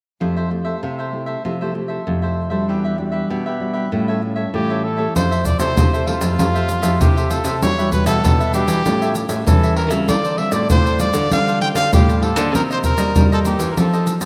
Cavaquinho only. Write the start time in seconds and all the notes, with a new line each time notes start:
0.20 F4 A4 C5 E5
0.36 A4 C5 E5
0.50 muted cavaquinho stroke
0.65 A4 C5 E5
0.82 F4 A4 C5 E5
0.99 A4 C5 E5
1.26 A4 C5 E5
1.44 F4 A4 C5 E5
1.61 A4 C5 E5
1.74 muted cavaquinho stroke
1.88 A4 C5 E5
2.22 A4 C5 E5
2.50 A4 C5 E5
2.68 D4 G4 B4 E5
2.84 G4 B4 E5
2.97 muted cavaquinho stroke
3.12 G4 B4 E5
3.29 D4 G4 B4 E5
3.46 G4 B4 E5
3.73 G4 B4 E5
3.91 G4 A4 C#5 E5
4.08 A4 C#5 E5
4.22 muted cavaquinho stroke
4.36 A4 C#5 E5
4.70 A4 C#5 E5
4.97 A4 C#5 E5
5.15 F4 A4 C5 E5
5.31 A4 C5 E5
5.45 muted cavaquinho stroke
5.59 A4 C5 E5
5.77 F4 A4 C5 E5
5.93 A4 C5 E5
6.06 F4 A4 C5 E5
6.38 F4 A4 C5 E5
6.55 A4 C5 E5
6.69 muted cavaquinho stroke
6.82 A4 C5 E5
7.16 A4 C5 E5
7.29 F4 A4 C5 E5
7.44 A4 C5 E5
7.62 D4 G4 B4 E5
7.78 G4 B4 E5
7.92 muted cavaquinho stroke
8.06 G4 B4 E5
8.24 D4 G4 B4 E5
8.40 G4 B4 E5
8.53 D4 G4 B4 E5
8.86 G4 A4 C#5 E5
9.02 A4 C#5 E5
9.15 muted cavaquinho stroke
9.29 A4 C#5 E5
9.63 A4 C#5 E5
9.76 G4 A4 C#5 E5
9.90 A4 C#5 E5
10.08 F4 A4 C5 D5
10.24 A4 C5 D5
10.37 muted cavaquinho stroke
10.51 A4 C5 D5
10.70 F4 A4 C5 D5
10.86 A4 C5 D5
10.99 F4 A4 C5 D5
11.31 F4 A4 C5 D5
11.47 A4 C5 D5
11.60 muted cavaquinho stroke
11.74 A4 C5 D5
12.09 A4 C5 D5
12.22 F4 A4 C5 D5
12.36 A4 C5 D5
12.54 D#4 A#4 C5 D#5
12.70 A#4 C5 D#5
12.84 muted cavaquinho stroke
12.98 A#4 C5 D#5
13.16 D#4 A#4 C5 D#5
13.32 A#4 C5 D#5
13.45 D#4 A#4 C5 D#5
13.77 F4 A4 C5 D#5
13.93 A4 C5 D#5
14.07 muted cavaquinho stroke
14.21 C5 D#5